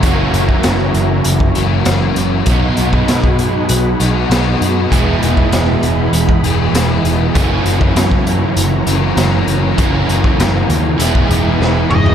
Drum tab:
HH |x-x-x-x-x-x-x-x-|x-x-x-x-x-x-x-x-|x-x-x-x-x-x-x-x-|x-x-x-x-x-x-x-x-|
SD |----o-------o---|----o-------o---|----o-------o---|----o-------o---|
T2 |----------------|----------------|----------------|----------------|
FT |----------------|----------------|----------------|----------------|
BD |o--o-----o------|o--o-o----------|o--o-----o------|o--o-o----------|

HH |x-x-x-x-x-x-----|
SD |----o-------o---|
T2 |--------------o-|
FT |---------------o|
BD |o--o-----o------|